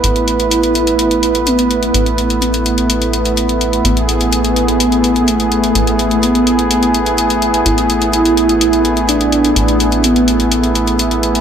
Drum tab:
HH |xxxxxxxxxxxxxxxx|xxxxxxxxxxxxxxxx|xxxxxxxxxxxxxxxx|xxxxxxxxxxxxxxxx|

HH |xxxxxxxxxxxxxxxx|xxxxxxxxxxxxxxxx|